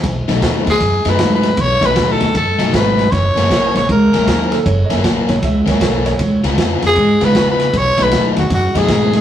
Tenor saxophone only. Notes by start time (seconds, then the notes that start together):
0.70 G#4
1.09 B4
1.35 B4
1.61 C#5
1.86 B4
2.12 A4
2.37 A4
2.76 B4
3.12 C#5
3.77 C#5
3.92 A#4
6.87 G#4
7.25 B4
7.51 B4
7.78 C#5
8.03 B4
8.39 F#4
8.54 F#4
8.78 G#4
9.16 G#4